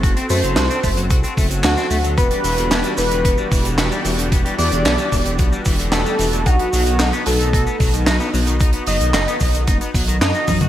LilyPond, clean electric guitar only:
\new Staff \with { instrumentName = "Clean electric guitar" } { \clef bass \time 4/4 \key e \minor \tempo 4 = 112 fis'16 c'16 a16 fis16 fis'16 c'16 a16 fis16 fis'16 c'16 a16 fis16 fis'16 c'16 a16 fis16 | b16 g16 e16 d16 b16 g16 e16 d16 b16 g16 e16 d16 b16 g16 e16 d16 | b16 g16 e16 d16 b16 g16 e16 d16 b16 g16 e16 d16 b16 g16 e16 d16 | dis'16 b16 fis16 dis16 dis'16 b16 fis16 dis16 dis'16 b16 fis16 dis16 dis'16 b16 fis16 dis16 |
dis'16 b16 fis16 dis16 dis'16 b16 fis16 dis16 dis'16 b16 fis16 dis16 dis'16 dis'16 dis'16 fis'16 | }